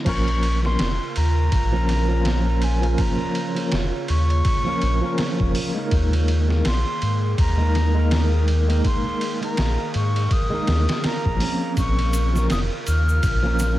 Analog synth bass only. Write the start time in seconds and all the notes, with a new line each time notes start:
0.06 A#1
0.80 F1
1.17 D#2
1.53 A#1
3.73 F1
4.09 D#2
4.82 A#1
5.40 F1
5.92 D#2
6.65 A#1
7.02 G#2
7.38 D#2
9.58 A#1
9.95 G#2
10.68 D#2
11.26 A#1
11.77 A#1
12.51 F1
12.87 D#2
13.24 A#1